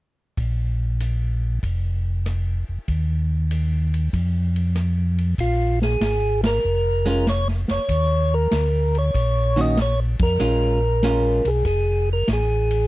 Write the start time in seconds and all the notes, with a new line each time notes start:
0.37 A#1, kick, ride
1.00 hi-hat pedal, ride
1.63 F1, kick, ride
2.26 cross-stick, hi-hat pedal, ride
2.69 F1
2.88 D#2, kick, ride
3.51 hi-hat pedal, ride
3.94 ride
4.13 F2, kick, ride
4.56 ride
4.75 cross-stick, hi-hat pedal, ride
5.18 ride
5.38 A#1 F4, kick, ride
5.82 G#4, snare
6.00 G#1, snare, hi-hat pedal, ride
6.43 A#4, snare, ride
6.64 F1
7.06 G#3 C#4 F4
7.10 A#4
7.27 C#5, snare, hi-hat pedal, ride
7.48 snare
7.68 F1 C#5, snare, ride
7.89 D#2, kick, ride
8.34 A#4
8.51 D2, snare, hi-hat pedal, ride
8.95 C#5, ride
9.15 A#1, kick, ride
9.56 D#3 A#3 C#4 F#4
9.61 D#5
9.77 snare, hi-hat pedal, ride
9.82 C#5
10.19 F2 A#4, kick, ride
10.40 A#1 G#3 C#4 F4
11.03 G#3 C#4 F4, snare, hi-hat pedal, ride
11.45 B1 G#4, ride
11.65 F1 G#4, kick, ride
12.13 A#4
12.28 A1, snare, hi-hat pedal, ride
12.33 G#4
12.71 ride